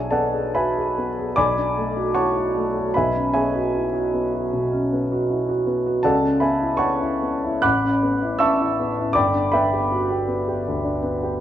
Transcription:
0.00 1.32 B1 soft
0.00 0.26 D4 soft
0.00 0.34 G#4 soft
0.00 1.38 C#5 soft
0.00 0.55 E5 soft
0.00 0.12 G#5 medium
0.11 0.46 B3 soft
0.11 0.51 A4 soft
0.11 0.51 D5 soft
0.11 0.52 F#5 soft
0.11 0.54 A5 medium
0.34 0.68 G#4 soft
0.55 0.76 F#4 soft
0.55 1.32 B4 soft
0.55 1.32 E5 soft
0.55 1.32 G#5 soft
0.55 1.35 B5 medium
0.76 1.08 G#4 soft
0.98 1.29 B3 soft
1.19 1.37 G#4 soft
1.36 2.90 B1 soft
1.36 2.10 D5 medium
1.36 2.10 G#5 medium
1.36 2.10 B5 medium
1.36 2.14 D6 medium
1.57 1.87 D4 soft
1.78 2.07 A3 soft
1.97 2.27 F#4 soft
2.14 2.34 E4 soft
2.14 2.90 C#5 soft
2.14 2.89 F#5 soft
2.14 2.90 A5 soft
2.14 2.93 C#6 medium
2.37 2.67 F#4 soft
2.56 2.86 A3 soft
2.78 2.95 F#4 soft
2.94 4.49 B1 soft
2.94 3.31 B4 soft
2.94 3.31 E5 medium
2.94 3.31 G#5 soft
2.94 3.33 B5 medium
3.16 3.46 C#4 soft
3.33 3.65 B3 soft
3.33 5.63 G#4 soft
3.33 5.63 C#5 soft
3.33 5.63 E5 soft
3.33 5.67 G#5 medium
3.55 3.85 F#4 soft
3.75 3.93 E4 soft
3.93 4.24 F#4 soft
4.14 4.44 B3 soft
4.34 4.64 F#4 soft
4.53 4.83 B2 soft
4.72 5.02 C#4 soft
4.93 5.22 B3 soft
5.12 5.41 F#4 soft
5.30 5.48 E4 soft
5.49 5.78 F#4 soft
5.67 5.97 B3 soft
5.86 6.04 F#4 soft
6.03 7.60 C#2 soft
6.03 6.39 A4 medium
6.03 6.39 D5 medium
6.03 6.39 F#5 medium
6.03 6.41 A5 medium
6.23 6.53 C#4 soft
6.40 6.72 B3 soft
6.40 6.77 B4 soft
6.40 6.76 E5 soft
6.40 6.77 G#5 soft
6.40 6.79 B5 medium
6.61 6.91 E4 soft
6.77 6.99 D4 soft
6.77 7.59 C#5 soft
6.77 7.59 F#5 soft
6.77 7.59 A5 medium
6.77 7.62 C#6 medium
7.01 7.35 E4 soft
7.22 7.56 B3 soft
7.44 7.64 E4 soft
7.62 9.13 A1 soft
7.62 8.37 F#5 medium
7.62 8.37 B5 medium
7.62 8.37 D6 medium
7.62 8.40 F#6 medium
7.84 8.15 C#4 soft
8.03 8.34 B3 soft
8.22 8.53 E4 soft
8.39 8.60 D4 soft
8.39 9.12 E5 medium
8.39 9.12 A5 medium
8.39 9.12 C#6 medium
8.39 9.15 E6 medium
8.60 8.90 E4 soft
8.80 9.09 B3 soft
8.98 9.17 E4 soft
9.13 10.63 G1 soft
9.13 9.51 D5 medium
9.13 9.51 G5 medium
9.13 9.50 B5 medium
9.13 9.52 D6 medium
9.34 9.65 D4 soft
9.52 9.85 B3 soft
9.52 11.40 B4 soft
9.52 11.40 E5 soft
9.52 11.40 G5 medium
9.52 11.40 B5 medium
9.73 10.04 G4 soft
9.92 10.11 F#4 soft
10.10 10.41 G4 soft
10.28 10.59 B3 soft
10.48 10.78 G4 soft
10.68 10.98 D2 soft
10.84 11.16 D4 soft
11.03 11.35 B3 soft
11.23 11.40 G4 soft

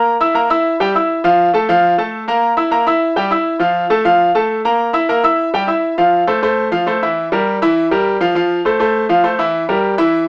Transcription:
0.00 0.15 A#3 medium
0.00 0.15 A#4 medium
0.00 0.15 A#5 medium
0.21 0.32 E4 medium
0.21 0.33 E5 medium
0.21 0.33 E6 medium
0.34 0.47 A#3 medium
0.34 0.47 A#4 medium
0.34 0.47 A#5 medium
0.50 0.74 E4 medium
0.50 0.74 E5 medium
0.50 0.75 E6 medium
0.80 0.92 G3 medium
0.80 0.92 G4 medium
0.80 0.92 G5 medium
0.95 1.19 E4 medium
0.95 1.19 E5 medium
0.95 1.19 E6 medium
1.24 1.48 F3 loud
1.24 1.49 F4 medium
1.24 1.49 F5 medium
1.54 1.66 A3 medium
1.54 1.66 A4 medium
1.54 1.66 A5 medium
1.69 1.93 F3 loud
1.69 1.93 F4 loud
1.69 1.93 F5 loud
1.98 2.22 A3 medium
1.98 2.22 A4 medium
1.98 2.23 A5 medium
2.28 2.52 A#3 medium
2.28 2.52 A#4 medium
2.28 2.53 A#5 medium
2.57 2.69 E4 medium
2.57 2.69 E5 medium
2.57 2.70 E6 medium
2.71 2.84 A#3 medium
2.71 2.84 A#4 medium
2.71 2.84 A#5 medium
2.87 3.11 E4 medium
2.87 3.11 E5 medium
2.87 3.12 E6 medium
3.16 3.28 G3 medium
3.16 3.29 G4 medium
3.16 3.29 G5 medium
3.31 3.55 E4 medium
3.31 3.56 E5 medium
3.31 3.56 E6 medium
3.59 3.84 F3 medium
3.59 3.85 F4 medium
3.59 3.85 F5 medium
3.90 4.02 A3 medium
3.90 4.02 A4 medium
3.90 4.03 A5 medium
4.05 4.29 F3 medium
4.05 4.29 F4 medium
4.05 4.30 F5 loud
4.35 4.59 A3 medium
4.35 4.59 A4 medium
4.35 4.59 A5 medium
4.65 4.89 A#3 medium
4.65 4.89 A#4 medium
4.65 4.89 A#5 medium
4.93 5.06 E4 medium
4.93 5.06 E5 medium
4.93 5.06 E6 medium
5.09 5.21 A#3 medium
5.09 5.21 A#4 medium
5.09 5.22 A#5 medium
5.23 5.48 E4 medium
5.23 5.48 E5 medium
5.23 5.49 E6 medium
5.54 5.66 G3 medium
5.54 5.66 G4 medium
5.54 5.66 G5 medium
5.67 5.92 E4 medium
5.67 5.92 E5 medium
5.67 5.93 E6 medium
5.98 6.22 F3 medium
5.98 6.22 F4 medium
5.98 6.22 F5 medium
6.27 6.40 A3 medium
6.27 6.40 A4 medium
6.27 6.40 C5 medium
6.42 6.67 A3 medium
6.42 6.67 A4 medium
6.42 6.67 C5 medium
6.72 6.84 F3 medium
6.72 6.84 F4 medium
6.72 6.84 F5 medium
6.87 6.99 A3 medium
6.87 6.99 A4 medium
6.87 6.99 C5 medium
7.03 7.26 E3 medium
7.03 7.26 E4 medium
7.03 7.27 E5 medium
7.32 7.56 G3 medium
7.32 7.56 G4 medium
7.32 7.56 A#4 medium
7.62 7.86 E3 medium
7.62 7.86 E4 loud
7.62 7.86 E5 medium
7.91 8.15 G3 medium
7.91 8.15 G4 medium
7.91 8.15 A#4 medium
8.20 8.32 F3 medium
8.20 8.33 F4 medium
8.20 8.33 F5 medium
8.35 8.59 F3 medium
8.35 8.60 F4 medium
8.35 8.60 F5 medium
8.65 8.77 A3 medium
8.65 8.78 A4 medium
8.65 8.77 C5 medium
8.80 9.04 A3 medium
8.80 9.04 A4 medium
8.80 9.04 C5 medium
9.09 9.21 F3 medium
9.09 9.21 F4 medium
9.09 9.22 F5 medium
9.24 9.36 A3 medium
9.24 9.36 A4 medium
9.24 9.36 C5 medium
9.39 9.63 E3 medium
9.39 9.63 E4 medium
9.39 9.63 E5 medium
9.69 9.93 G3 medium
9.69 9.93 G4 medium
9.69 9.93 A#4 medium
9.98 10.22 E3 loud
9.98 10.22 E4 medium
9.98 10.22 E5 loud

